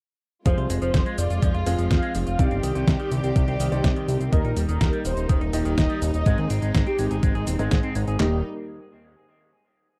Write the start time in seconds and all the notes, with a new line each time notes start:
0.45 F1 F3 G#3 C4 F4 G#4 C5 F5, kick, closed hi-hat, cabasa
0.58 C2 F4, closed hi-hat
0.70 F1 G#3, open hi-hat, cabasa
0.82 F1 F3 C5, closed hi-hat, cabasa
0.94 F1 F3, kick, snare, closed hi-hat, cabasa
1.06 G#3, closed hi-hat
1.18 F1 F3 D5, open hi-hat, cabasa
1.30 F1 F4, closed hi-hat, cabasa
1.42 F1 F3, kick, closed hi-hat, cabasa
1.54 F1 F4, closed hi-hat
1.66 F1 F3 G#3 C4 F4 G#4 F5, open hi-hat, cabasa
1.78 F1 F3, closed hi-hat, cabasa
1.90 F1 F3 F5, kick, snare, closed hi-hat, cabasa
2.03 G#3, closed hi-hat
2.15 F1 F3, open hi-hat, cabasa
2.27 F1 F4 F5, closed hi-hat, cabasa
2.39 C2 C3 D#3 G3 C4 D#4 G4 D5, kick, closed hi-hat, cabasa
2.51 G1 C4, closed hi-hat
2.63 C2 D#3, open hi-hat, cabasa
2.75 C2 C3, closed hi-hat, cabasa
2.87 C2 C3, kick, snare, closed hi-hat, cabasa
3.00 D#3 G4, closed hi-hat
3.12 C2 C3, open hi-hat, cabasa
3.24 C2 C4, closed hi-hat, cabasa
3.36 C2 C3, kick, closed hi-hat, cabasa
3.48 C2 C4, closed hi-hat
3.60 C2 D#3, open hi-hat, cabasa
3.72 C2 C3 C4 D#4 G4 D5, closed hi-hat, cabasa
3.84 C2 C3, kick, snare, closed hi-hat, cabasa
3.96 D#3, closed hi-hat
4.08 C2 C3, open hi-hat, cabasa
4.20 C2 C4, closed hi-hat, cabasa
4.32 D#1 D#3 A#3 D#4 G4 A#4 D#5, kick, closed hi-hat, cabasa
4.45 A#1 D#4, closed hi-hat
4.57 D#1 G3, open hi-hat, cabasa
4.69 D#1 D#3 A#4, closed hi-hat, cabasa
4.81 D#1 D#3, kick, snare, closed hi-hat, cabasa
4.93 G3, closed hi-hat
5.05 D#1 D#3 C5, open hi-hat, cabasa
5.17 D#1 D#4, closed hi-hat, cabasa
5.29 D#1 D#3, kick, closed hi-hat, cabasa
5.41 D#1 D#4, closed hi-hat
5.53 D#1 D#3 G3 A#3 D#4 G4 D#5, open hi-hat, cabasa
5.65 D#1 D#3, closed hi-hat, cabasa
5.78 D#1 D#5, kick, snare, closed hi-hat, cabasa
5.90 G3, closed hi-hat
6.02 D#1 D#3, open hi-hat, cabasa
6.14 D#1 D#4 D#5, closed hi-hat, cabasa
6.26 G#1 G#2 G#3 C4 D#4 G#4 D#5, kick, closed hi-hat, cabasa
6.38 D#2 G#4, closed hi-hat
6.50 G#1 C4, open hi-hat, cabasa
6.62 G#1 G#3, closed hi-hat, cabasa
6.74 G#1 G#3, kick, snare, closed hi-hat, cabasa
6.87 C4 G4, closed hi-hat
6.99 G#1 G#3, open hi-hat, cabasa
7.11 G#1 G#4, closed hi-hat, cabasa
7.23 G#1 G#3, kick, closed hi-hat, cabasa
7.35 G#1 G#4, closed hi-hat
7.47 D#1 C4, open hi-hat, cabasa
7.59 G#1 G#2 G#3 C4 D#4 G#4 D#5, closed hi-hat, cabasa
7.71 G#1 G#3, kick, snare, closed hi-hat, cabasa
7.83 C4, closed hi-hat
7.95 G#1 G#3, open hi-hat, cabasa
8.08 G#1 G#4, closed hi-hat, cabasa
8.19 D#1 D#3 G3 A#3 D#4 G4 D#5, snare, clap